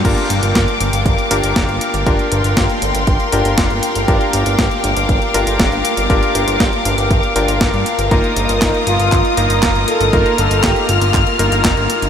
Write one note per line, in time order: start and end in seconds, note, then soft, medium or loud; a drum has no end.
0.05 0.15 G1 loud
0.05 1.28 D4 medium
0.05 1.28 F4 medium
0.05 1.28 G4 medium
0.05 12.09 A#4 medium
0.05 1.28 A#4 medium
0.05 12.09 F5 medium
0.05 8.07 G5 medium
0.05 2.04 D6 medium
0.05 kick loud
0.05 closed hi-hat medium
0.05 crash medium
0.18 closed hi-hat soft
0.30 0.41 G1 medium
0.30 closed hi-hat medium
0.43 0.53 G1 medium
0.43 closed hi-hat medium
0.55 0.66 G1 loud
0.55 kick loud
0.55 snare loud
0.55 closed hi-hat medium
0.68 closed hi-hat soft
0.81 0.91 G1 medium
0.81 closed hi-hat loud
0.93 1.04 G1 medium
0.93 closed hi-hat medium
1.06 1.16 G1 loud
1.06 kick loud
1.06 closed hi-hat medium
1.18 closed hi-hat soft
1.31 1.42 G1 medium
1.31 2.03 D4 medium
1.31 2.03 F4 medium
1.31 2.04 G4 medium
1.31 2.04 A#4 medium
1.31 closed hi-hat loud
1.44 1.54 G1 medium
1.44 closed hi-hat medium
1.56 1.67 F1 loud
1.56 kick loud
1.56 snare loud
1.56 closed hi-hat medium
1.69 1.79 G1 medium
1.69 closed hi-hat soft
1.81 closed hi-hat medium
1.94 2.05 G1 medium
1.94 closed hi-hat medium
2.06 2.17 G1 loud
2.06 3.29 D4 medium
2.06 3.30 F4 medium
2.06 3.30 G4 medium
2.06 3.30 A#4 medium
2.06 4.06 C6 medium
2.06 kick loud
2.06 closed hi-hat medium
2.19 closed hi-hat soft
2.32 2.42 G1 medium
2.32 closed hi-hat medium
2.44 2.55 G1 medium
2.44 closed hi-hat medium
2.57 2.68 G1 loud
2.57 kick loud
2.57 snare loud
2.57 closed hi-hat soft
2.70 closed hi-hat soft
2.82 2.93 G1 medium
2.82 closed hi-hat medium
2.95 3.05 G1 medium
2.95 closed hi-hat medium
3.07 3.18 G1 loud
3.07 kick loud
3.07 closed hi-hat medium
3.20 closed hi-hat soft
3.32 3.43 G1 medium
3.32 4.05 D4 medium
3.32 4.05 F4 medium
3.32 4.05 G4 medium
3.32 4.05 A#4 medium
3.32 closed hi-hat medium
3.45 3.56 G1 medium
3.45 closed hi-hat soft
3.58 3.68 F1 loud
3.58 kick loud
3.58 snare loud
3.58 closed hi-hat medium
3.70 3.81 G1 medium
3.70 closed hi-hat soft
3.83 closed hi-hat medium
3.95 4.06 G1 medium
3.95 closed hi-hat medium
4.08 4.19 G1 loud
4.08 5.31 D4 medium
4.08 5.31 F4 medium
4.08 5.31 G4 medium
4.08 5.31 A#4 medium
4.08 8.08 D6 medium
4.08 kick loud
4.08 closed hi-hat medium
4.21 closed hi-hat soft
4.33 4.44 G1 loud
4.33 closed hi-hat medium
4.46 4.57 G1 medium
4.46 closed hi-hat medium
4.59 4.69 G1 loud
4.59 kick loud
4.59 snare loud
4.59 closed hi-hat soft
4.71 closed hi-hat soft
4.84 4.94 G1 medium
4.84 closed hi-hat medium
4.97 5.07 G1 medium
4.97 closed hi-hat medium
5.09 5.20 G1 loud
5.09 kick loud
5.09 closed hi-hat soft
5.22 closed hi-hat soft
5.34 5.45 G1 medium
5.34 6.07 D4 medium
5.34 6.07 F4 medium
5.34 6.07 G4 medium
5.34 6.07 A#4 medium
5.34 closed hi-hat medium
5.47 5.58 G1 medium
5.47 closed hi-hat soft
5.59 5.70 F1 loud
5.59 kick loud
5.59 snare loud
5.59 closed hi-hat soft
5.72 5.83 G1 medium
5.72 closed hi-hat soft
5.85 closed hi-hat medium
5.97 6.08 G1 medium
5.97 closed hi-hat soft
6.10 6.20 G1 medium
6.10 7.33 D4 medium
6.10 7.33 F4 medium
6.10 7.33 G4 medium
6.10 7.33 A#4 medium
6.10 kick loud
6.10 closed hi-hat soft
6.23 closed hi-hat soft
6.35 6.46 G1 medium
6.35 closed hi-hat medium
6.48 6.58 G1 medium
6.48 closed hi-hat soft
6.60 6.71 G1 loud
6.60 kick loud
6.60 snare loud
6.60 closed hi-hat soft
6.73 closed hi-hat soft
6.85 6.96 G1 medium
6.85 closed hi-hat medium
6.98 7.09 G1 medium
6.98 closed hi-hat soft
7.11 7.21 G1 loud
7.11 kick loud
7.11 closed hi-hat soft
7.23 closed hi-hat soft
7.36 7.46 G1 medium
7.36 8.08 D4 medium
7.36 8.08 F4 medium
7.36 8.08 G4 medium
7.36 8.08 A#4 medium
7.36 closed hi-hat medium
7.48 7.59 G1 medium
7.48 closed hi-hat soft
7.61 7.72 G1 loud
7.61 kick loud
7.61 snare loud
7.61 closed hi-hat soft
7.73 7.84 G2 medium
7.73 closed hi-hat soft
7.86 closed hi-hat medium
7.99 8.09 G1 medium
7.99 closed hi-hat soft
8.11 8.22 G1 loud
8.11 9.35 A#3 medium
8.11 9.34 D#4 medium
8.11 9.34 F4 medium
8.11 9.34 A#4 medium
8.11 12.09 D#5 medium
8.11 10.11 D#6 medium
8.11 kick loud
8.11 closed hi-hat soft
8.24 closed hi-hat soft
8.37 8.47 G1 medium
8.37 closed hi-hat medium
8.49 8.60 G1 medium
8.49 closed hi-hat soft
8.62 8.72 G1 loud
8.62 8.88 D#4 medium
8.62 kick loud
8.62 snare loud
8.62 clap medium
8.62 closed hi-hat soft
8.74 closed hi-hat soft
8.87 8.98 G1 medium
8.87 9.34 F4 loud
8.87 closed hi-hat medium
9.00 9.10 G1 medium
9.00 closed hi-hat medium
9.12 9.23 G1 loud
9.12 kick loud
9.12 clap medium
9.12 closed hi-hat soft
9.25 closed hi-hat soft
9.37 9.48 G1 medium
9.37 10.10 A#3 medium
9.37 10.10 D#4 medium
9.37 10.10 F4 medium
9.37 9.89 A#4 loud
9.37 10.10 A#4 medium
9.37 closed hi-hat medium
9.50 9.61 G1 medium
9.50 closed hi-hat soft
9.63 9.73 F1 loud
9.63 kick loud
9.63 snare loud
9.63 clap medium
9.63 closed hi-hat soft
9.75 9.86 G1 medium
9.75 closed hi-hat soft
9.88 10.14 A4 loud
9.88 closed hi-hat medium
10.00 10.11 G1 medium
10.00 closed hi-hat soft
10.13 10.24 G1 loud
10.13 11.36 A#3 medium
10.13 11.36 D#4 medium
10.13 11.36 F4 medium
10.13 10.39 A#4 loud
10.13 11.36 A#4 medium
10.13 12.09 F6 medium
10.13 kick loud
10.13 closed hi-hat soft
10.26 closed hi-hat soft
10.38 10.49 G1 loud
10.38 10.64 A4 loud
10.38 closed hi-hat medium
10.51 10.62 G1 medium
10.51 closed hi-hat soft
10.64 10.90 G4 loud
10.64 kick loud
10.64 snare loud
10.64 clap medium
10.64 closed hi-hat soft
10.76 closed hi-hat soft
10.89 10.99 G1 medium
10.89 11.86 F4 loud
10.89 closed hi-hat medium
11.01 11.12 G1 medium
11.01 closed hi-hat medium
11.14 11.25 G1 loud
11.14 kick loud
11.14 clap medium
11.14 closed hi-hat soft
11.27 closed hi-hat soft
11.39 11.50 G1 medium
11.39 12.09 A#3 medium
11.39 12.09 D#4 medium
11.39 12.09 F4 medium
11.39 12.09 A#4 medium
11.39 closed hi-hat loud
11.52 11.63 G1 medium
11.52 closed hi-hat medium
11.65 11.75 F1 loud
11.65 kick loud
11.65 snare loud
11.65 clap medium
11.65 closed hi-hat medium
11.77 11.88 G1 medium
11.77 closed hi-hat soft
11.90 closed hi-hat medium
12.02 12.09 G1 medium
12.02 closed hi-hat medium